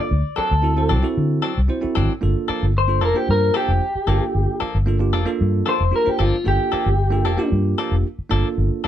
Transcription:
Already playing: tine electric piano A#3 D4 F4 A4
0.00 clean electric guitar D5
0.11 fingered electric bass D2
0.36 clean electric guitar F#3 C4 D4 A4, muted fingered electric bass stroke
0.51 fingered electric bass D2
0.62 tine electric piano C4 E4 F#4 A4
0.76 tine electric piano C4 E4 F#4 C5
0.89 fingered electric bass C2, clean electric guitar F#3 C4 D4 A4
1.02 tine electric piano C4 E4 F#4 A4
1.17 fingered electric bass D3
1.42 clean electric guitar F#3 C4 D4 A4
1.58 fingered electric bass C2
1.68 tine electric piano C4 E4 F#4 C5
1.81 tine electric piano C4 E4 F#4 A4, muted fingered electric bass stroke
1.95 fingered electric bass G#1, clean electric guitar F#3 C4 D4 A4
2.21 fingered electric bass G1, tine electric piano A#3 D4 F4 A4
2.48 clean electric guitar F3 A#3 D4 A4, muted fingered electric bass stroke
2.63 fingered electric bass G1
2.78 clean electric guitar C5
2.88 tine electric piano A#3 D4 F4 A4
3.01 fingered electric bass F1, clean electric guitar F3 A#3 D4 A4 A#4
3.15 tine electric piano A#3 D4 F4 C5, clean electric guitar G4
3.29 fingered electric bass G2, clean electric guitar A#4
3.54 clean electric guitar F3 A#3 D4 G4 A4
3.68 fingered electric bass F1
3.95 muted fingered electric bass stroke
4.07 fingered electric bass G1, clean electric guitar F3 A#3 D4 A4, tine electric piano A#3 D4 F4 A4
4.35 fingered electric bass G1
4.60 clean electric guitar F3 A#3 D4 A4, muted fingered electric bass stroke
4.75 fingered electric bass G1
4.86 tine electric piano A#3 D4 F4 A4
4.99 tine electric piano A#3 D4 F4 G4
5.13 fingered electric bass F1, clean electric guitar F3 A#3 D4 A4
5.25 tine electric piano A#3 D4 F4 A4
5.41 fingered electric bass G2
5.66 clean electric guitar F3 A#3 D4 A4 C5
5.80 fingered electric bass F1
5.91 tine electric piano A#3 D4 F4 G4
5.96 clean electric guitar A#4
6.05 tine electric piano A#3 D4 F4 C5, muted fingered electric bass stroke
6.09 clean electric guitar G4
6.19 fingered electric bass G1, clean electric guitar F3 A#3 D4 F4 A4
6.44 fingered electric bass G1, tine electric piano A#3 D4 F4 A4, clean electric guitar G4
6.72 clean electric guitar F3 A#3 D4 A4, muted fingered electric bass stroke
6.86 fingered electric bass G1
7.10 tine electric piano A#3 D4 F4 A4
7.25 fingered electric bass F1, clean electric guitar F3 A#3 D4 A4
7.37 tine electric piano A#3 D4 F4 G4
7.52 fingered electric bass G2
7.78 clean electric guitar F3 A#3 D4 A4
7.92 fingered electric bass F1
8.19 muted fingered electric bass stroke
8.29 fingered electric bass G1, clean electric guitar F3 A#3 D4 A4, tine electric piano A#3 D4 F4 A4
8.58 fingered electric bass G1
8.84 clean electric guitar D4 A4, muted fingered electric bass stroke

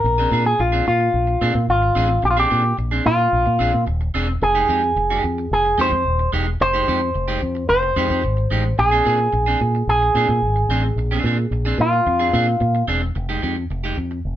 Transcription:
Already playing: clean electric guitar A#4
0.04 fingered electric bass A#1, muted clean electric guitar stroke
0.18 clean electric guitar C4 D4 G#4
0.31 fingered electric bass A#2, clean electric guitar C4 D4 G#4
0.46 clean electric guitar G#4, muted clean electric guitar stroke
0.59 fingered electric bass A#1, clean electric guitar F4, muted clean electric guitar stroke
0.72 clean electric guitar C4 D4 G#4
0.87 fingered electric bass A#2, clean electric guitar F4, muted clean electric guitar stroke
1.00 muted clean electric guitar stroke
1.14 fingered electric bass A#1
1.27 muted clean electric guitar stroke
1.41 fingered electric bass A#2, clean electric guitar C4 D4 G#4
1.54 fingered electric bass A#2, muted clean electric guitar stroke
1.68 fingered electric bass G#1, clean electric guitar F4
1.82 muted clean electric guitar stroke
1.95 fingered electric bass A1, clean electric guitar C4 D4 G#4
2.09 muted clean electric guitar stroke
2.23 fingered electric bass A#1, clean electric guitar G4, muted clean electric guitar stroke
2.31 clean electric guitar F4
2.37 clean electric guitar C4 D4 G4 G#4
2.49 fingered electric bass A#2, clean electric guitar C4 D4 G#4
2.64 muted clean electric guitar stroke
2.78 fingered electric bass A#1, muted clean electric guitar stroke
2.91 clean electric guitar C4 D4 G#4
3.05 fingered electric bass A#2, clean electric guitar F4, muted clean electric guitar stroke
3.18 muted clean electric guitar stroke
3.33 fingered electric bass A#1
3.46 fingered electric bass A#2, muted clean electric guitar stroke
3.59 fingered electric bass A#1, clean electric guitar C4 D4 G#4
3.73 fingered electric bass A#2, muted clean electric guitar stroke
3.87 fingered electric bass D#1, muted clean electric guitar stroke
4.01 muted clean electric guitar stroke
4.14 fingered electric bass E1, clean electric guitar C4 D4 G#4
4.28 muted clean electric guitar stroke
4.42 fingered electric bass F1, clean electric guitar G#4, muted clean electric guitar stroke
4.55 clean electric guitar G#3 D#4 G4
4.69 fingered electric bass F2, clean electric guitar G#3 D#4 G4
4.83 muted clean electric guitar stroke
4.96 fingered electric bass F1, muted clean electric guitar stroke
5.10 clean electric guitar G#3 D#4 G4
5.24 fingered electric bass F2, muted clean electric guitar stroke
5.38 muted clean electric guitar stroke
5.51 fingered electric bass F1, clean electric guitar G#4
5.65 muted clean electric guitar stroke
5.78 fingered electric bass F2, clean electric guitar G#3 D#4 G4 C5
5.92 fingered electric bass F2, muted clean electric guitar stroke
6.05 fingered electric bass D#1
6.19 muted clean electric guitar stroke
6.33 fingered electric bass E1, clean electric guitar G#3 D#4 G4
6.47 muted clean electric guitar stroke
6.60 fingered electric bass F1, clean electric guitar C5, muted clean electric guitar stroke
6.73 clean electric guitar G#3 D#4 G4
6.87 fingered electric bass F2, clean electric guitar G#3 D#4 G4
7.01 muted clean electric guitar stroke
7.15 fingered electric bass F1, muted clean electric guitar stroke
7.28 clean electric guitar G#3 D#4 G4
7.42 fingered electric bass F2, muted clean electric guitar stroke
7.55 muted clean electric guitar stroke
7.69 fingered electric bass F1, clean electric guitar C5, muted clean electric guitar stroke
7.83 muted clean electric guitar stroke
7.96 fingered electric bass F2, clean electric guitar G#3 D#4 G4
8.10 fingered electric bass F2, clean electric guitar G#3 D#4 G4
8.24 fingered electric bass G#1, muted clean electric guitar stroke
8.37 muted clean electric guitar stroke
8.51 fingered electric bass A1, clean electric guitar G#3 D#4 G4
8.65 muted clean electric guitar stroke
8.78 fingered electric bass A#1, clean electric guitar G#4, muted clean electric guitar stroke
8.91 clean electric guitar C4 D4 G#4
9.05 fingered electric bass A#2, clean electric guitar C4 D4 G#4
9.20 muted clean electric guitar stroke
9.33 fingered electric bass A#1, muted clean electric guitar stroke
9.46 clean electric guitar C4 D4 G#4
9.61 fingered electric bass A#2, muted clean electric guitar stroke
9.75 muted clean electric guitar stroke
9.87 fingered electric bass A#1, clean electric guitar G#4
10.02 muted clean electric guitar stroke
10.15 fingered electric bass A#2, clean electric guitar C4 D4 G#4
10.29 fingered electric bass A#2, muted clean electric guitar stroke
10.42 fingered electric bass G#1
10.56 muted clean electric guitar stroke
10.69 fingered electric bass A1, clean electric guitar C4 D4 G#4
10.84 muted clean electric guitar stroke
10.96 fingered electric bass A#1, muted clean electric guitar stroke
11.11 clean electric guitar C4 D4 G#4
11.24 fingered electric bass A#2, clean electric guitar C4 D4 G#4
11.51 fingered electric bass A#1, muted clean electric guitar stroke
11.65 clean electric guitar C4 D4 G#4
11.78 fingered electric bass A#2, clean electric guitar F4, muted clean electric guitar stroke
11.93 muted clean electric guitar stroke
12.06 fingered electric bass F2, muted clean electric guitar stroke
12.19 clean electric guitar C4 D4 G#4
12.33 fingered electric bass A#2, clean electric guitar C4 D4 G#4
12.47 muted clean electric guitar stroke
12.60 fingered electric bass A#2, muted clean electric guitar stroke
12.75 muted clean electric guitar stroke
12.88 fingered electric bass E1, clean electric guitar C4 D4 G#4
13.02 muted clean electric guitar stroke
13.15 fingered electric bass F1, muted clean electric guitar stroke
13.29 clean electric guitar G#3 D#4 G4
13.42 fingered electric bass F2, clean electric guitar G#3 D#4 G4
13.56 muted clean electric guitar stroke
13.70 fingered electric bass F1, muted clean electric guitar stroke
13.84 clean electric guitar G#3 D#4 G4
13.97 fingered electric bass F2, muted clean electric guitar stroke
14.11 muted clean electric guitar stroke
14.25 fingered electric bass F1

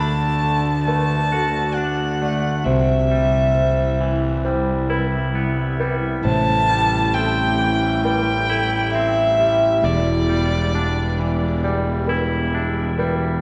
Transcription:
Already playing: fingered electric bass D2, clean electric guitar D3 A3 D4, ambient pad D3 A3 F#4 D5, violin A5
0.00 felt piano A4
0.44 clean electric guitar D3
0.84 clean electric guitar A3, felt piano B4, violin A5
1.32 clean electric guitar F#4, felt piano A4
1.74 clean electric guitar D4, violin F#5
2.22 clean electric guitar A3, felt piano D5
2.64 fingered electric bass C2, ambient pad C3 G3 E4, clean electric guitar C3, felt piano C5, violin E5
3.11 clean electric guitar G3
3.55 felt piano C5
4.01 clean electric guitar E3
4.45 clean electric guitar G3, felt piano C5, ambient pad E5
4.90 clean electric guitar E4, felt piano B4
5.35 clean electric guitar B3
5.80 clean electric guitar G3, felt piano B4
6.24 fingered electric bass A1, clean electric guitar A2, ambient pad A3 G4, felt piano C5, violin A5
6.70 clean electric guitar G3
7.14 clean electric guitar C4, felt piano A4, violin G5
7.59 clean electric guitar E3
8.04 clean electric guitar G3, felt piano B4, violin G5
8.50 clean electric guitar E4, felt piano A4
8.93 clean electric guitar C4, violin E5
9.39 clean electric guitar G3, felt piano E5
9.84 fingered electric bass E1, clean electric guitar E2, ambient pad E3 B3 D5, felt piano D5, violin D5
10.29 clean electric guitar G3
10.73 clean electric guitar D4, felt piano D5
11.19 clean electric guitar E3
11.63 clean electric guitar G3, felt piano D5, ambient pad E5
12.07 clean electric guitar E4, felt piano B4
12.55 clean electric guitar D4
12.98 clean electric guitar G3, felt piano B4

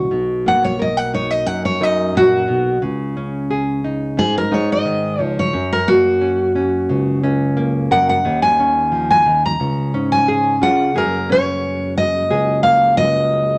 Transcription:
Already playing: nylon-string guitar D#4 F#4
0.11 tine electric piano B1, nylon-string guitar B2
0.46 nylon-string guitar A#3, steel-string acoustic guitar F#5
0.64 steel-string acoustic guitar C#5
0.79 nylon-string guitar A#4, steel-string acoustic guitar D#5
0.97 steel-string acoustic guitar F#5
1.14 nylon-string guitar D#4, steel-string acoustic guitar C#5
1.31 steel-string acoustic guitar D#5
1.46 tine electric piano F#2, nylon-string guitar F#2, steel-string acoustic guitar F#5
1.65 steel-string acoustic guitar C#5
1.81 tine electric piano F#2, nylon-string guitar D#4, steel-string acoustic guitar D#5
2.15 nylon-string guitar A#2, steel-string acoustic guitar F#4
2.48 tine electric piano B1, nylon-string guitar B2
2.82 tine electric piano C#2, nylon-string guitar C#3
3.17 nylon-string guitar C#4
3.51 nylon-string guitar G#4
3.84 nylon-string guitar D#4
4.17 nylon-string guitar G#2, tine electric piano G#2, steel-string acoustic guitar G#4
4.38 steel-string acoustic guitar A#4
4.52 tine electric piano G#2, nylon-string guitar D#4, steel-string acoustic guitar C#5
4.72 steel-string acoustic guitar D#5
4.85 nylon-string guitar D#3
5.19 tine electric piano C#2, nylon-string guitar F3, steel-string acoustic guitar C#5
5.39 steel-string acoustic guitar C#5
5.53 nylon-string guitar F#2, tine electric piano F#2
5.73 steel-string acoustic guitar A#4
5.88 nylon-string guitar A#3, steel-string acoustic guitar F#4
6.21 nylon-string guitar C#4
6.55 nylon-string guitar C#4
6.89 tine electric piano C#2, nylon-string guitar C#3
7.24 tine electric piano C#2, nylon-string guitar C#4
7.57 nylon-string guitar A#3
7.91 tine electric piano F#2, nylon-string guitar A#4, steel-string acoustic guitar F#5
8.09 steel-string acoustic guitar F#5
8.25 tine electric piano D#2, nylon-string guitar D#3
8.42 steel-string acoustic guitar G#5
8.60 nylon-string guitar C#4
8.92 nylon-string guitar F3
9.11 steel-string acoustic guitar G#5
9.26 nylon-string guitar D#3
9.46 steel-string acoustic guitar A#5
9.60 tine electric piano C#2, nylon-string guitar C#3
9.94 tine electric piano G#2, nylon-string guitar C#4
10.12 steel-string acoustic guitar G#5
10.28 nylon-string guitar G#4
10.62 tine electric piano C#3, nylon-string guitar F4, steel-string acoustic guitar F#5
10.95 nylon-string guitar F#2 G#4, tine electric piano F#2, tonewheel organ C#3 G#3 A#3 F#4, steel-string acoustic guitar A#4
11.30 nylon-string guitar C#4, steel-string acoustic guitar C#5
11.98 steel-string acoustic guitar D#5
12.30 tine electric piano C#2, nylon-string guitar G#4
12.63 nylon-string guitar A#3, steel-string acoustic guitar F5
12.97 tine electric piano C#2, steel-string acoustic guitar D#5

